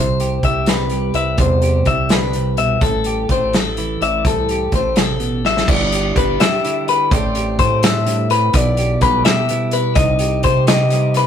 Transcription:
Already playing: C2 C3 G3 E4 G4 C5
0.20 G4, closed hi-hat
0.43 C2 G3 E5, kick, closed hi-hat
0.66 B4, snare, closed hi-hat
0.90 G3, closed hi-hat
1.14 C2 B4 E5, closed hi-hat
1.38 E2 C3 C5, kick, closed hi-hat
1.62 G4, closed hi-hat
1.85 C2 G3 E5, kick, closed hi-hat
2.09 D3 B4, snare, closed hi-hat
2.33 C3, closed hi-hat
2.57 B2 E5, closed hi-hat
2.81 A1 A2 A4, kick, closed hi-hat
3.04 G4, closed hi-hat
3.29 A1 A3 C5, kick, closed hi-hat
3.53 A4, snare, closed hi-hat
3.77 E3, closed hi-hat
4.01 A1 D5 E5, closed hi-hat
4.24 C2 A2 A4, kick, closed hi-hat
4.49 G4, closed hi-hat
4.72 A1 A3 C5, kick, closed hi-hat
4.96 C3 A4, snare, closed hi-hat
5.20 B2, closed hi-hat
5.45 A2 E5, snare
5.57 snare
5.68 G1 G2 E4 D5, kick, crash
5.92 G4, closed hi-hat
6.15 G1 G3 B4, kick, closed hi-hat
6.40 G4 E5, snare, closed hi-hat
6.64 D3 E4, closed hi-hat
6.88 B4, closed hi-hat
7.11 A1 A2 A3 C4 G4 C5 D5, kick, closed hi-hat
7.35 G4, closed hi-hat
7.59 A2 A3 C5, kick, closed hi-hat
7.83 E5, snare, closed hi-hat
8.06 G2, closed hi-hat
8.30 A2 B4, closed hi-hat
8.54 B1 B2 E4 D5, kick, closed hi-hat
8.77 G4, closed hi-hat
9.01 B1 G3 A4 B4, kick, closed hi-hat
9.25 G4 E5, snare, closed hi-hat
9.49 B2 E4, closed hi-hat
9.71 B4, closed hi-hat
9.95 C2 C3 D#4 D#5, kick, closed hi-hat
10.19 G4, closed hi-hat
10.43 C3 G3 C5, kick, closed hi-hat
10.67 G4 D#5, snare, closed hi-hat
10.90 G3 D#4, closed hi-hat
11.14 B4, closed hi-hat

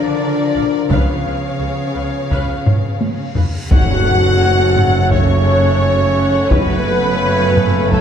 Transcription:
Already playing: D3 F3 A#3 D4 F4 A#4 D5
0.55 A#1 D5 F5
0.90 C#2 C#3 B3 C#4 G#4 B4 C#5 F5, taiko, reverse cymbal
1.25 C#2 B4 F5
1.60 C#2 G#4 C#5
1.95 C#2 B4 F5
2.31 C#2 B4 F5, taiko
2.66 taiko low-mid
3.01 taiko high
3.36 C#2 B4 F5, taiko low
3.69 F#1 F#2 C#3 A3 C#4 F#4 A4 C#5 F#5, taiko, tam-tam, impact
4.07 A4 F#5
4.42 F#4 C#5
4.76 A4 F#5, taiko low-mid
5.11 C#4 F#4 C#5, taiko
5.46 A4 F#5
5.81 F#4 C#5
6.17 A4 F#5
6.51 F#1 F#2 C#3 A3 B3 C#4 F#4 A4 B4 C#5, taiko
6.87 A4 F#5
7.21 F#4 C#5
7.57 A4 F#5, taiko low-mid
7.92 A3 F#4 A4 C#5, taiko

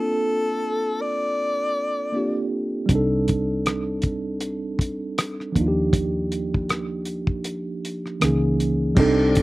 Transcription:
Already playing: A#3 C4 D4 F4 A4
1.01 D5
2.12 A#3 C4 D4 F4
2.17 G4
2.86 G3 C4, kick, closed hi-hat
2.90 C2 D4 D#4
2.95 A4
3.28 kick, closed hi-hat
3.66 cross-stick, closed hi-hat
4.02 kick, closed hi-hat
4.40 closed hi-hat
4.79 kick, closed hi-hat
5.18 cross-stick, closed hi-hat
5.40 cross-stick
5.52 F3 A#3, kick, closed hi-hat
5.57 D#2 D4 D#4
5.61 F4
5.68 G4
5.93 kick, closed hi-hat
6.32 closed hi-hat
6.54 kick
6.69 cross-stick, closed hi-hat
7.05 closed hi-hat
7.27 kick
7.44 closed hi-hat
7.85 closed hi-hat
8.06 cross-stick
8.20 C#2 D#3 A#3 C#4 D#4, cross-stick, closed hi-hat
8.25 E3 G#4
8.60 closed hi-hat
8.95 C2 C3 G3 C4 D4 D#4 D5, kick, crash
9.00 A4
9.35 kick, closed hi-hat

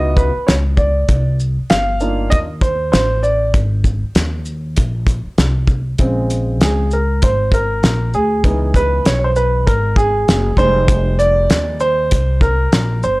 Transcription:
Already playing: C#2 B3 D#4 E4 F#4 D#5
0.16 B4, kick, shaker
0.36 muted upright bass stroke
0.47 C#2 C#5, snare, closed hi-hat
0.77 D5, kick, shaker
1.09 C2, kick, closed hi-hat
1.40 shaker
1.59 muted upright bass stroke
1.70 G1 F5, snare, closed hi-hat
2.00 A#3 D4 D#4 F4, shaker
2.30 D#2 D#5, kick, closed hi-hat
2.61 C5, kick, closed hi-hat, shaker
2.92 A1 C5, snare, closed hi-hat
3.23 D5, shaker
3.54 G#1, kick, closed hi-hat
3.84 kick, shaker
4.03 muted upright bass stroke
4.15 D#2, snare, closed hi-hat
4.45 shaker
4.77 A#1, kick, closed hi-hat
5.07 kick, closed hi-hat, shaker
5.26 muted upright bass stroke
5.38 C2, snare, closed hi-hat
5.67 kick, shaker
5.98 A#1 C#3 G#3 C4, kick, closed hi-hat
6.30 closed hi-hat, shaker
6.61 C#2 G#4, snare, closed hi-hat
6.91 A#4, shaker
7.22 G#1 C5, kick, closed hi-hat
7.52 A#4, kick, closed hi-hat, shaker
7.83 A#1, snare, closed hi-hat
8.14 D2 G#4, shaker
8.44 C#2 E3 B3 D#4, kick, closed hi-hat
8.74 B4, kick, closed hi-hat, shaker
9.05 B1 C#5, snare, closed hi-hat
9.19 C#5
9.24 C5
9.36 B4, shaker
9.67 G#1 A#4, kick, closed hi-hat
9.96 G#4, kick, shaker
10.28 F#1, snare, closed hi-hat
10.57 F1 G3 G#3 D#4 C5, kick, shaker
10.88 kick, closed hi-hat
11.19 D5, closed hi-hat, shaker
11.50 D#2, snare, closed hi-hat
11.80 C5, shaker
12.11 C2, kick, closed hi-hat
12.41 A#4, kick, shaker
12.72 A#1, snare, closed hi-hat
13.03 G1 C5, shaker

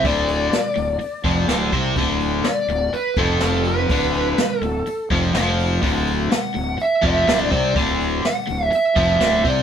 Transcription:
0.04 D1 D2 D3 D5, kick, open hi-hat
0.28 open hi-hat
0.51 muted overdriven electric guitar stroke, muted fingered electric bass stroke, snare, open hi-hat
0.76 D1 D2, open hi-hat
0.99 muted overdriven electric guitar stroke, muted fingered electric bass stroke, open hi-hat
1.24 F1 F2 F3, kick, open hi-hat
1.48 D1 D2 D3, snare, open hi-hat
1.72 C2 C3 C4, kick, open hi-hat
1.96 D1 D2 D3, kick, open hi-hat
2.20 open hi-hat
2.44 D5, muted fingered electric bass stroke, muted overdriven electric guitar stroke, snare, open hi-hat
2.68 D1 D2, open hi-hat
2.93 B4, muted fingered electric bass stroke, muted overdriven electric guitar stroke, open hi-hat
3.16 F1 F2 F3 A4, kick, open hi-hat
3.40 F1 F2 F3 A4, snare, open hi-hat
3.64 B4, open hi-hat
3.89 D1 D2 D3, kick, open hi-hat
4.14 open hi-hat
4.38 muted fingered electric bass stroke, muted overdriven electric guitar stroke, snare, open hi-hat
4.62 D1 D2 A4, open hi-hat
4.86 muted fingered electric bass stroke, muted overdriven electric guitar stroke, open hi-hat
5.10 F1 F2 F3, kick, open hi-hat
5.34 F1 F2 F3, snare, open hi-hat
5.59 open hi-hat
5.82 D1 D2 D3, kick, open hi-hat
6.07 open hi-hat
6.31 F#5, muted overdriven electric guitar stroke, muted fingered electric bass stroke, snare, open hi-hat
6.54 D1 D2, open hi-hat
6.78 E5, muted overdriven electric guitar stroke, muted fingered electric bass stroke, open hi-hat
7.02 F1 F2 F3 E5, kick, open hi-hat
7.27 D1 D2 D3, snare, open hi-hat
7.50 C2 C3 C4 D5, kick, open hi-hat
7.75 D1 D2 D3, kick, open hi-hat
8.00 open hi-hat
8.23 F#5, muted overdriven electric guitar stroke, muted fingered electric bass stroke, snare, open hi-hat
8.47 D1 D2, open hi-hat
8.72 E5, muted overdriven electric guitar stroke, muted fingered electric bass stroke, open hi-hat
8.96 F1 F2 F3 E5, kick, open hi-hat
9.20 D1 D2 D3, snare, open hi-hat
9.45 C2 C3 C4 D5, kick, open hi-hat

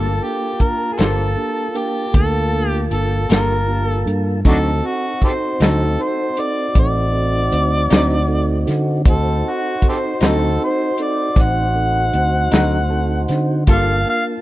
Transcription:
Already playing: G1 A#3 D4 F4 A4 A5
0.23 A#3 D4 F4 G4 A4
0.60 A#3 D4 F4 A#4, kick, closed hi-hat
0.93 G#4
0.98 G1 G3 A#3 D4 F4 A4 C5, snare, closed hi-hat
1.37 A#3 D4 F4 G4
1.75 A#3 D4 F4 G4 A#4, closed hi-hat
2.13 D2 A#3 D4 F4 A4, kick, closed hi-hat
2.53 A#3 D4 F4 A4
2.69 G4
2.91 G1 A#3 D4 F4 A4, closed hi-hat
3.29 G1 G3 A#3 D4 F4 A4 A#4, snare, closed hi-hat
3.68 A#3 D4 F4 G4
3.87 A4
4.06 G2 A#3 D4 F4 A4, closed hi-hat
4.44 D2 D3 F#3 C4 D4 D#4 F#4 A4, kick, closed hi-hat
4.83 C4 D#4 F#4 A4
5.22 C4 D#4 F#4 G4 A4 C5, kick, closed hi-hat
5.60 D2 D3 F#3 C4 D#4 F#4 A4 C5, snare, closed hi-hat
6.00 C4 D#4 F#4 A4 C5
6.37 C4 D#4 F#4 A4 D5, closed hi-hat
6.75 A1 C4 D#4 F#4 A4, kick, closed hi-hat
6.79 D5
7.13 C4 D#4 F#4 A4
7.52 D2 C4 D#4 F#4 C5, closed hi-hat
7.90 D2 D3 F#3 C4 D#4 F#4 C5, snare, closed hi-hat
8.28 C4 D#4 F#4 A4
8.66 D3 C4 D#4 F#4 A4, snare, closed hi-hat
9.05 D2 C4 D#4 F#4 C5, kick, closed hi-hat
9.10 A4
9.45 C4 D#4 F#4 A4
9.50 F#4
9.82 C4 D#4 F#4 A4, kick, closed hi-hat
9.89 G4 A4 C5
10.21 D2 D3 F#3 C4 D#4 F#4 A4, snare, closed hi-hat
10.27 A4
10.60 C4 D#4 F#4 A4 C5
10.98 C4 D#4 F#4 A4, closed hi-hat
11.02 D5
11.36 A1 C4 D#4 F#4 C5, kick, snare, closed hi-hat
11.41 F#5
11.75 C4 D#4 F#4 A4
12.13 D2 C4 D#4 F#4 C5, closed hi-hat
12.51 D2 D3 F#3 C4 D#4 F#4 A4, snare, closed hi-hat
12.90 C4 D#4 F#4 A4 A5
13.28 D3 C4 D#4 F#4 C5 F#5, snare, closed hi-hat
13.67 G1 G3 A#3 D4 F4 A4 A5, kick, closed hi-hat
13.72 F5
14.06 A#3 D4 F4 A#4 F5

